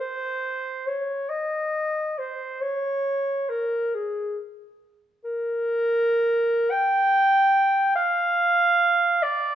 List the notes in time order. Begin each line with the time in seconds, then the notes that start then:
0.00 C5
0.87 C#5
1.29 D#5
2.18 C5
2.61 C#5
3.49 A#4
3.95 G#4
5.25 A#4
6.71 G5
7.96 F5
9.23 D5